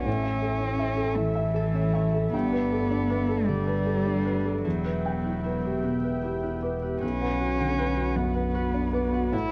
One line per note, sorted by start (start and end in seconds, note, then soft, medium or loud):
0.05 2.35 A1 soft
0.05 2.29 A2 soft
0.05 4.65 A3 soft
0.05 1.18 C#4 medium
0.05 4.65 A4 medium
0.05 0.80 A4 soft
0.05 2.34 E5 medium
0.24 0.53 E5 soft
0.24 0.43 E5 soft
0.42 0.72 A4 soft
0.42 0.62 E5 soft
0.61 0.90 C#4 soft
0.61 1.16 E5 soft
0.79 1.55 A4 medium
0.79 1.09 E5 soft
0.97 1.27 A4 soft
1.16 1.47 E3 soft
1.16 2.33 E3 medium
1.16 1.35 E5 soft
1.35 1.66 E5 soft
1.35 1.74 E5 soft
1.54 1.86 A4 soft
1.54 4.68 A4 medium
1.74 2.06 C#4 soft
1.74 2.13 E5 medium
1.94 2.37 C#5 medium
1.94 2.26 E5 medium
2.14 2.33 A4 soft
2.14 2.37 E5 soft
2.33 4.66 G1 medium
2.33 4.60 G2 medium
2.33 3.48 B3 medium
2.33 4.65 D5 medium
2.33 6.24 G5 medium
2.52 2.83 B4 soft
2.52 2.71 D5 medium
2.72 3.02 A4 soft
2.72 2.91 D5 soft
2.91 3.21 D4 soft
2.91 3.47 D5 medium
3.10 7.00 D4 medium
3.10 3.40 B4 soft
3.29 3.59 A4 soft
3.47 3.78 D3 soft
3.47 4.64 G3 medium
3.47 3.66 D5 soft
3.67 3.98 B4 soft
3.67 4.04 D5 soft
3.86 4.17 A4 soft
4.05 4.37 D4 soft
4.05 4.44 D5 soft
4.25 4.83 B4 soft
4.25 4.57 B4 soft
4.45 4.65 A4 soft
4.45 4.68 D5 soft
4.64 7.03 E1 medium
4.64 6.98 E2 soft
4.64 5.82 F#3 medium
4.64 9.33 B3 medium
4.64 5.43 E4 medium
4.64 7.03 E5 medium
4.64 7.03 G5 medium
4.84 5.03 B4 soft
4.84 5.17 B4 soft
5.05 5.23 B4 soft
5.05 5.37 G5 soft
5.24 5.57 E4 soft
5.24 5.83 B4 soft
5.44 6.22 E4 soft
5.44 5.77 B4 soft
5.64 5.96 G4 soft
5.83 6.15 B2 soft
5.83 6.02 B4 soft
6.03 6.35 B4 soft
6.03 6.41 B4 soft
6.23 7.05 E4 medium
6.23 6.55 G4 soft
6.43 6.75 E4 soft
6.43 6.81 B4 soft
6.62 7.05 G4 soft
6.62 6.94 B4 soft
6.82 7.03 G4 soft
6.82 7.00 B4 soft
7.01 9.33 B1 medium
7.01 9.29 B1 soft
7.01 8.17 C#4 medium
7.01 9.33 F#4 medium
7.01 7.77 B4 medium
7.01 9.33 B4 medium
7.21 7.52 B4 soft
7.21 7.39 F#5 soft
7.40 7.71 F#4 soft
7.40 7.58 F#5 soft
7.60 7.90 D3 soft
7.60 8.15 F#5 soft
7.78 8.53 B4 medium
7.78 8.09 B4 soft
7.97 8.27 F#4 soft
8.16 8.47 F#2 soft
8.16 9.34 B3 medium
8.16 8.34 F#5 soft
8.35 8.66 B4 soft
8.35 8.73 F#5 soft
8.54 8.86 F#4 soft
8.54 9.36 B4 medium
8.74 9.06 D4 soft
8.74 9.13 F#5 soft
8.93 9.25 B4 medium
8.93 9.36 D5 soft
9.13 9.32 F#4 soft
9.13 9.36 F#5 medium
9.32 9.52 A1 medium
9.32 9.52 A2 medium
9.32 9.52 A3 medium
9.32 9.52 E4 medium
9.32 9.52 A4 medium
9.32 9.52 C#5 medium